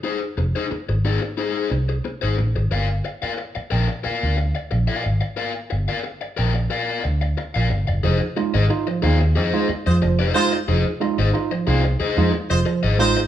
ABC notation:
X:1
M:4/4
L:1/16
Q:1/4=90
K:Fdor
V:1 name="Overdriven electric guitar"
[EAc] z2 [EAc] z2 [EAd] z [EAc]2 z3 [EAc] z2 | [Bdf] z2 [Bdf] z2 [Bdg] z [Bdf]2 z3 [Bdf] z2 | [Bdf] z2 [Bdf] z2 [Bdg] z [Bdf]2 z3 [Bdf] z2 | [Ace] z2 [Ace] z2 [Acf] z [Ace]2 z3 [Ace] z2 |
[Ace] z2 [Ace] z2 [Acf] z [Ace]2 z3 [Ace] z2 |]
V:2 name="Horn section"
z16 | z16 | z16 | z8 z3 [A,Fc] z2 [A,Fc]2 |
z8 z3 [A,Fc] z2 [A,Fc]2 |]
V:3 name="Tine electric piano"
z16 | z16 | z16 | F, [EF] [A,EF] z [EF] F, [EF] z2 [A,EF] z F, F, z [A,EF] [EF] |
F, [EF] [A,EF] z [EF] F, [EF] z2 [A,EF] z F, F, z [A,EF] [EF] |]
V:4 name="Fingered electric bass" clef=bass
z2 F,,, z2 A,,,2 z3 C,,2 z A,,, =A,,, _A,,, | G,,,2 z4 B,,, z2 D,,2 z B,,, z A,,, z | z2 G,,, z3 B,,,2 z2 D,,2 z B,,, G,,, _G,,, | F,,, z2 A,,, z2 E,,2 F,, z2 F,, F,,,2 z2 |
F,,, z2 A,,, z2 C,,2 z F,, z F,,, z A,,, =A,,, _A,,, |]